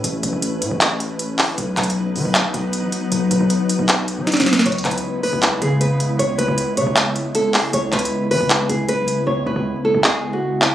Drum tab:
HH |x-----------x-----------x-----------x-----------x-----------x-----------x-----------o-----------|x-----------x---x---x---------------o-----------x-----------x-----------x-----------x-----------|x-----------x-----------x-----------x-----------x-----------x-----------x--x--x--x--x---x---x---|x---x---x---x---x---x---------------o-----------x-----------x-----------x-----------x-----------|
CP |------------------------------------------------x-----------------------------------x-----------|------------x-----------------------------------x-----------------------------------------------|------------------------------------------------x-----------------------------------------------|------------x-----------------------------------x-----------------------------------------------|
SD |------------------------------------------------------------------------------------------------|------------------------------------------------------------------------------------------------|------------------------------------------------------------------------o---o---o---o---o---o---|------------------------------------------------------------------------------------------------|

HH |x-----------x-----------x-----------x-----------x-----------x-----------x-----------o-----------|x-----------x---x---x---------------o-----------x-----------x-----------x-----------x-----------|------------------------------------------------------------------------------------------------|
CP |------------------------------------------------x-----------------------------------x-----------|------------x-----------------------------------x-----------------------------------------------|------------------------------------------------x-----------------------------------x-----------|
SD |------------------------------------------------------------------------------------------------|------------------------------------------------------------------------------------------------|------------------------------------------------------------------------------------------------|